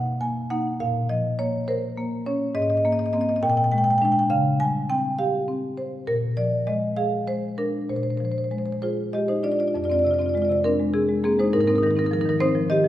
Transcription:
marimba
Already playing: B2 F#5
0.21 A#3 G#5
0.50 A#3 D#4 F#5
0.80 A#2 F5
1.09 F3 D#5
1.39 A#3 C#5
1.68 A#4 C5
1.97 A#3
2.26 C#4 C#5
2.55 G#2 D#5
2.62 D#5
2.70 D#5
2.77 D#5
2.85 A#3 D#5
2.92 D#5
2.99 D#5
3.06 D#5
3.13 A#3 C4 D#5
3.21 D#5
3.29 D#5
3.36 D#5
3.43 A#2 G5
3.50 G5
3.57 G5
3.64 G5
3.72 G#3 G5
3.78 G5
3.84 G5
3.90 G5
3.98 G#3 D4 G5
4.05 G5
4.12 G5
4.19 G5
4.30 C#3 F5
4.60 G3 G#5
4.89 C4 G5
5.19 G4 F5
5.48 C4
5.78 C5
6.07 A#2 A#4
6.37 F3 D5
6.67 G#3 D#5
6.97 G#4 F5
7.27 G#3 C5
7.58 D4 A#4
7.89 A#2 C5
7.96 C5
8.03 C5
8.10 C5
8.17 F3 C5
8.25 C5
8.32 C5
8.38 C5
8.44 C5
8.51 G#3 C5
8.58 C5
8.66 C5
8.72 C5
8.82 F4 G#4 C5
9.13 G#3 G4 D#5
9.28 D#4 C5
9.43 D4 F4 D5
9.52 F4 D5
9.59 F4 D5
9.68 F4 D5
9.74 F2 F4 D5
9.84 F4 D5
9.90 C4 D5
9.94 F4
9.99 F4 D5
10.04 C3 D5
10.11 F4 D5
10.19 C4 F4 D5
10.26 F4 D5
10.34 G#3 F4 D5
10.42 F4 D5
10.49 C3 F4 D5
10.64 C4 D4 A#4
10.80 G#3
10.94 C3 C4 G#4
11.09 G#3
11.24 A#3 C4 G#4
11.39 G#3 D#4 C5
11.53 G#2 D#4 A#4
11.61 D#4 A#4
11.67 C4 D#4 A#4
11.76 D#4 A#4
11.83 D#3 D#4 A#4
11.91 A#4
11.96 C4 D#4 A#4
12.05 D#4 A#4
12.11 F3 D#4 A#4
12.21 D#4 A#4
12.26 D#3 A#4
12.30 D#4
12.40 C4 D#4 C5
12.55 F3
12.70 D#3 G4 D#5
12.84 F3

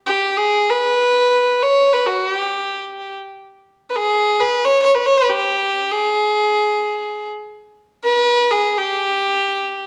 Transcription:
violin
0.07 G4
0.37 G#4
0.70 B4
1.63 C#5
1.93 B4
2.06 F#4
2.33 G4
3.90 B4
3.96 G#4
4.40 B4
4.65 C#5
4.83 C#5
4.94 B4
5.06 C#5
5.17 B4
5.30 G4
5.91 G#4
8.04 B4
8.51 G#4
8.78 G4

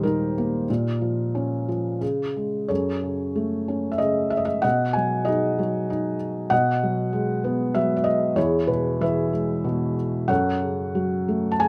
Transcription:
felt piano
Already playing: D#2 A#2 D#3 G3 D#4 G4 A#4 C5 D#5
0.03 D#3 D#4 G4 A#4
0.38 A#3
0.70 A#2
1.01 F3
1.35 C#4
1.69 F3
2.01 C#3
2.36 G#3
2.68 F#2 G#4 A4 C#5
3.03 C#3
3.36 A3
3.68 C#4
3.92 E5
3.98 C#3 D#5
4.30 E5
4.37 D#5
4.45 E5
4.62 B2 D#5 F#5
4.93 F#3 G#5
5.25 D#4 F#4 G#4 D#5
5.59 F#3
5.90 D#4
6.50 B2 D#5 F#5
6.83 F#3
7.13 G#3
7.44 B3
7.75 F#3 E5
7.97 E5
8.04 D#5
8.36 E2 E4 G#4 C#5
8.67 B2 B4
9.01 E3 G#4 B4 E5
9.33 G#3
9.64 B2
10.28 F#2 A4 C#5 F#5
10.62 C#3
10.95 F#3
11.28 A3
11.52 A5
11.59 C#3 G#5

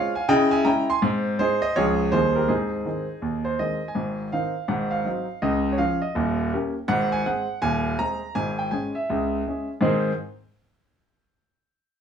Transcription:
grand piano
Already playing: G#3 C4 F4 C#5 F5
0.15 F5 G#5
0.29 C#3 E4 D#5 G5
0.51 E5 G#5
0.65 G#3 C#4 E4 G5 A#5
0.90 G#5 C6
1.02 G#2 C4
1.39 G#3 C4 D#4 G#4 C5
1.62 C5 D#5
1.76 C#2 F3 G#3 F4 G#4 C#5
2.12 D#2 D#3 G3 D#4 G#4 C5
2.36 G4 A#4
2.48 G#2 C4 D#4 G#4
2.85 D#3 G#3 C4
3.22 D#2
3.45 C5
3.59 D#3 G#3 C4 D#5
3.88 G#5
3.95 G#1 G#2
4.32 D#3 C4 D#4 F5
4.68 G#1 G#2 F#5
4.91 F5
5.05 F#3 C4 D#4
5.42 C#2 C#3 D#5
5.72 C#5
5.78 F3 C#4 F4 F5
6.02 D#5
6.15 D#1 D#2
6.53 A#3 C#4 G4
6.88 G#1 G#2 F#5
7.12 G#5
7.26 G#3 C4 G#4 F#5
7.62 D#1 D#2 G#5
7.99 G#3 C4 G#4 A#5
8.35 G#1 G#2 G#5
8.59 G5
8.71 G#3 C#4 G#4 G#5
8.95 E5
9.10 C#2 C#3
9.47 G#3 C#4 G#4
9.81 G#2 D#3 C4 D#4 G#4 C5 G#5

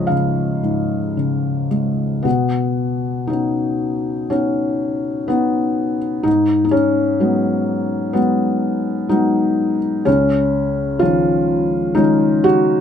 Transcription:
felt piano
Already playing: C#2 G#2 C#3 F3 C#5 D#5
0.07 C#3 F5
0.63 G#2
1.17 C#3
1.71 G#3
2.23 B2 B3
3.27 B3 C#4 D#4
4.30 B3 C#4 D#4
5.28 B3 C#4 D#4
6.23 G#2 D#4
6.65 D#4
6.71 C#4
7.20 F#3 G#3 B3
8.13 F#3 G#3 B3
9.09 F#3 G#3 B3 D#4
10.05 C#2 C#4
10.99 D#3 F3 C#4 F4
11.95 D#3 G#3 C#4 D#4
12.44 F#4

